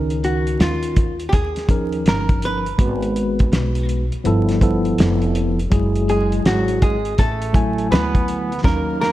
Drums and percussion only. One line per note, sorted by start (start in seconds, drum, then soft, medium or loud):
0.10 closed hi-hat medium
0.24 closed hi-hat medium
0.47 closed hi-hat medium
0.60 snare loud
0.60 closed hi-hat medium
0.83 closed hi-hat medium
0.96 kick medium
0.96 closed hi-hat medium
1.20 closed hi-hat soft
1.33 kick medium
1.33 closed hi-hat medium
1.56 snare soft
1.56 closed hi-hat medium
1.69 kick medium
1.69 closed hi-hat medium
1.92 closed hi-hat soft
2.06 snare loud
2.06 closed hi-hat medium
2.29 kick medium
2.29 closed hi-hat soft
2.42 closed hi-hat medium
2.66 closed hi-hat soft
2.79 kick loud
2.79 closed hi-hat medium
3.03 closed hi-hat medium
3.16 closed hi-hat medium
3.39 kick medium
3.39 closed hi-hat medium
3.53 snare medium
3.53 closed hi-hat medium
3.75 closed hi-hat medium
3.89 closed hi-hat medium
4.12 closed hi-hat soft
4.25 closed hi-hat medium
4.49 snare soft
4.49 closed hi-hat medium
4.61 kick medium
4.61 closed hi-hat medium
4.85 closed hi-hat soft
4.98 snare loud
4.98 closed hi-hat medium
5.22 closed hi-hat soft
5.35 closed hi-hat medium
5.59 closed hi-hat soft
5.72 kick loud
5.72 closed hi-hat loud
5.95 closed hi-hat medium
6.09 closed hi-hat medium
6.32 closed hi-hat medium
6.46 snare medium
6.46 closed hi-hat medium
6.68 closed hi-hat medium
6.82 kick medium
6.82 closed hi-hat medium
7.05 closed hi-hat medium
7.18 kick medium
7.18 closed hi-hat medium
7.42 closed hi-hat medium
7.54 kick medium
7.54 closed hi-hat medium
7.78 closed hi-hat soft
7.92 snare loud
7.92 closed hi-hat medium
8.15 kick medium
8.15 closed hi-hat soft
8.28 closed hi-hat medium
8.52 closed hi-hat soft
8.64 kick loud
8.64 snare medium
9.03 snare medium